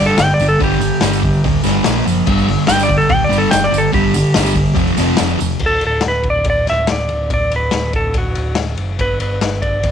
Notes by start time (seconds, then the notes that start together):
Already playing: G1
0.00 G2 D3 G3
0.06 A4
0.18 G1 G2 D3 G5, snare, open hi-hat, tambourine
0.34 D5
0.39 G1 G2 D3, open hi-hat, tambourine
0.49 A4
0.59 G1 G2 D3 G3, kick, open hi-hat, tambourine
0.64 G4
0.72 tambourine
0.79 G2 D3, open hi-hat, tambourine
1.00 G1 G2 D3 G3, snare, open hi-hat, tambourine
1.13 tambourine
1.23 G2 D3, kick, open hi-hat
1.33 tambourine
1.44 D1 G2 D3, kick, open hi-hat, tambourine
1.63 G1 G2 D3 G3, snare, open hi-hat, tambourine
1.84 A#1 A#2 F3 A#3, snare, open hi-hat, tambourine
2.06 F#1 A#2 F3, open hi-hat, tambourine
2.26 G1 G2 D3 G3, kick, tambourine, crash
2.38 tambourine
2.46 G2 D3, open hi-hat
2.67 G1 G2 D3 G3 G5, snare, open hi-hat, tambourine
2.79 D5, tambourine
2.88 G2 D3, kick, open hi-hat, tambourine
2.98 A4, tambourine
3.09 D1 G2 D3 G5, kick, open hi-hat, tambourine
3.24 D5
3.30 G1 G2 D3 G3, open hi-hat, tambourine
3.38 A4
3.50 G1 G2 D3 G5, snare, open hi-hat, tambourine
3.64 D5
3.71 G1 G2 D3, open hi-hat, tambourine
3.78 A4
3.92 G1 G2 D3 G3 G4, kick, open hi-hat, tambourine
4.14 G2 D3, open hi-hat, tambourine
4.27 tambourine
4.34 G1 G2 D3 G3, snare, open hi-hat, tambourine
4.46 tambourine
4.55 G2 D3, kick, open hi-hat, tambourine
4.66 tambourine
4.75 F1 F2 C3 F3, kick, open hi-hat, tambourine
4.87 tambourine
4.97 F1 F2 C3 F3, snare, open hi-hat, tambourine
5.17 F1 F2 C3 F3, snare, open hi-hat, tambourine
5.30 tambourine
5.38 E1 F2 C3, open hi-hat, tambourine
5.51 tambourine
5.59 D1, kick, crash
5.66 A4
5.81 ride
5.85 D1 A4
6.01 D1, snare, ride
6.08 B4
6.23 kick, ride
6.30 D5
6.44 D1, kick, ride
6.50 D5
6.67 D1 E5, snare, ride
6.87 D1, snare, ride
6.92 D5
7.09 D1, ride
7.30 D1 D5, kick, ride
7.51 D1, ride
7.56 B4
7.71 D1, snare, ride
7.93 A4, kick, ride
8.14 D1, kick, ride
8.18 F#4
8.35 D1, ride
8.55 D1, snare, ride
8.77 F#1, ride
8.99 G1 B4, kick, ride
9.20 G1 B4, ride
9.41 G1, snare, ride
9.62 D5, kick, ride
9.83 G1, kick, ride